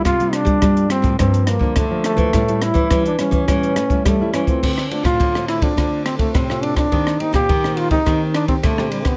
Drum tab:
CC |----------------|----------------|x---------------|----------------|
RD |----------------|----------------|--xxx-xxx-xxx-xx|x-xxx-xxx-xxx-xx|
HH |xxxxxxxxxxx-x-xx|xxxxxxxxxxxxx-xx|----------------|----------------|
SD |r-r-r-r-r-r-r-r-|r-r-r-r-r-r-r-r-|-r-r-rr-r-r-rr-r|-r-r-r--r-r-rr-r|
BD |o--oo--oo--oo--o|o--oo--oo--oo--o|o--oo--oo--oo--o|o--oo--oo--oo--o|